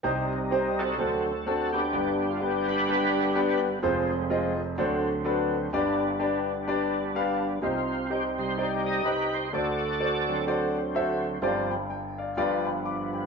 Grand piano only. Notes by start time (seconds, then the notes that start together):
0.03 C2 C3 C4 D#4 G4 C5
0.51 C4 D#4 G4 C5
0.99 D2 D3 C4 D4 F#4 A4
1.46 C4 D4 F#4 A4
1.94 G1 G2 B3 D4 G4 B4
2.41 B3 D4 G4 B4
2.88 B3 D4 G4 B4
3.35 B3 D4 G4 B4
3.82 F1 F2 C4 F4 G#4 C5
4.30 C4 F4 G#4 D#5
4.78 D2 D3 D4 F#4 A4 C5
5.24 D4 F#4 A4 B4
5.73 G1 G2 D4 G4 B4 D5
6.19 D4 G4 B4 D5
6.68 D4 G4 B4 D5
7.15 D4 G4 B4 F5
7.62 C2 C3 D#4 G4 C5 D#5
8.10 D#4 G4 C5 D#5
8.58 D#4 G4 C5 D5
9.05 D#4 G4 C5 D#5
9.53 D2 D3 F#4 A4 C5 D5
10.00 F#4 A4 C5 D5
10.47 F#4 A4 C5 D5
10.95 F#4 A4 C5 E5
11.42 G1 G2 F4 G4 C5 D5
11.71 G5 B5
11.90 G5
12.18 D5 F5
12.37 G1 G2 F4 G4 B4 D5
12.66 G5 B5
12.85 B5 D6
13.13 G5 B5